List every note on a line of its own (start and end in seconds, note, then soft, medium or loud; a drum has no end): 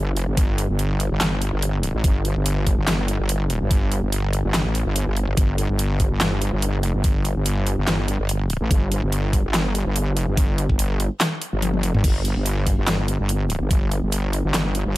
0.00 0.26 G1 medium
0.17 closed hi-hat medium
0.28 0.68 G1 medium
0.37 kick loud
0.37 closed hi-hat medium
0.58 closed hi-hat medium
0.69 1.09 G1 medium
0.79 closed hi-hat medium
1.00 closed hi-hat medium
1.11 1.51 G1 loud
1.21 snare loud
1.21 clap loud
1.21 closed hi-hat medium
1.42 closed hi-hat medium
1.53 1.93 G1 medium
1.62 closed hi-hat medium
1.83 closed hi-hat medium
1.95 2.03 A1 medium
2.04 2.34 G1 loud
2.04 kick loud
2.04 closed hi-hat medium
2.25 closed hi-hat soft
2.36 2.76 G1 medium
2.46 closed hi-hat medium
2.67 kick medium
2.67 closed hi-hat medium
2.78 3.18 G1 loud
2.87 snare loud
2.87 clap medium
2.87 closed hi-hat medium
3.08 closed hi-hat medium
3.20 3.59 G1 medium
3.29 closed hi-hat medium
3.50 closed hi-hat medium
3.61 4.01 G1 medium
3.71 kick loud
3.71 closed hi-hat medium
3.92 closed hi-hat medium
4.03 4.43 G1 medium
4.12 closed hi-hat medium
4.33 closed hi-hat medium
4.45 4.64 G1 loud
4.54 snare loud
4.54 clap medium
4.54 closed hi-hat medium
4.65 4.84 A1 medium
4.75 closed hi-hat medium
4.86 5.05 G1 medium
4.96 closed hi-hat medium
5.07 5.26 G1 medium
5.17 closed hi-hat medium
5.28 5.36 G1 loud
5.37 5.68 G1 loud
5.37 kick loud
5.37 closed hi-hat medium
5.58 closed hi-hat medium
5.69 6.09 G1 medium
5.79 closed hi-hat medium
6.00 kick medium
6.00 closed hi-hat medium
6.11 6.51 G1 loud
6.21 snare loud
6.21 clap medium
6.21 closed hi-hat medium
6.42 closed hi-hat medium
6.53 6.93 G1 loud
6.62 closed hi-hat medium
6.83 closed hi-hat medium
6.94 7.34 G1 medium
7.04 kick loud
7.04 closed hi-hat medium
7.25 closed hi-hat medium
7.36 7.76 G1 medium
7.46 closed hi-hat medium
7.67 closed hi-hat medium
7.78 8.18 G1 loud
7.87 snare loud
7.87 clap medium
7.87 closed hi-hat medium
8.08 closed hi-hat medium
8.19 8.59 G1 medium
8.29 closed hi-hat medium
8.50 closed hi-hat medium
8.61 8.69 A1 medium
8.71 9.01 G1 loud
8.71 kick loud
8.71 closed hi-hat medium
8.92 closed hi-hat medium
9.03 9.43 G1 loud
9.12 closed hi-hat medium
9.33 kick medium
9.33 closed hi-hat medium
9.44 9.84 G1 medium
9.54 snare loud
9.54 clap medium
9.54 closed hi-hat medium
9.75 closed hi-hat medium
9.86 10.26 G1 medium
9.96 closed hi-hat medium
10.17 closed hi-hat medium
10.28 10.68 G1 medium
10.37 kick loud
10.37 closed hi-hat medium
10.58 closed hi-hat medium
10.69 11.09 G1 medium
10.69 kick medium
10.79 closed hi-hat medium
11.00 closed hi-hat medium
11.21 snare loud
11.21 clap medium
11.21 closed hi-hat medium
11.42 closed hi-hat medium
11.53 11.93 G1 medium
11.62 closed hi-hat medium
11.62 high tom medium
11.74 high tom medium
11.83 closed hi-hat medium
11.94 12.03 G1 loud
11.94 mid tom medium
12.04 12.34 G1 medium
12.04 kick loud
12.04 closed hi-hat medium
12.04 crash medium
12.25 closed hi-hat medium
12.36 12.76 G1 medium
12.46 closed hi-hat medium
12.67 kick medium
12.67 closed hi-hat medium
12.78 13.18 G1 loud
12.87 snare loud
12.87 clap loud
12.87 closed hi-hat medium
13.08 closed hi-hat medium
13.20 13.59 G1 medium
13.29 closed hi-hat medium
13.50 closed hi-hat medium
13.61 14.01 G1 medium
13.71 kick loud
13.71 closed hi-hat medium
13.92 closed hi-hat medium
14.03 14.43 G1 medium
14.12 closed hi-hat medium
14.33 closed hi-hat medium
14.44 14.84 G1 loud
14.54 snare loud
14.54 clap loud
14.54 closed hi-hat medium
14.75 closed hi-hat medium
14.86 14.97 G1 medium